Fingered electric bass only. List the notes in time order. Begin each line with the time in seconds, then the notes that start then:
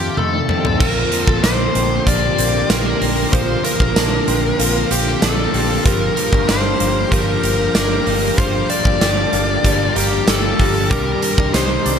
0.17 F2
0.49 F2
0.81 A#1
1.28 A#1
1.44 A#1
1.75 A#1
2.07 A#1
2.38 A#1
2.70 A#1
3.01 A#1
3.33 A#1
3.80 A#1
3.96 A#1
4.28 A#1
4.59 A#1
4.91 A#1
5.22 A#1
5.54 A#1
5.86 G1
6.33 G1
6.49 G1
6.80 G1
7.12 G1
7.43 G1
7.75 G1
8.07 G1
8.38 G1
8.85 G1
9.01 G1
9.33 G1
9.64 G1
9.96 G1
10.28 G1
10.60 G1
10.91 C2
11.38 C2
11.54 C2
11.86 C2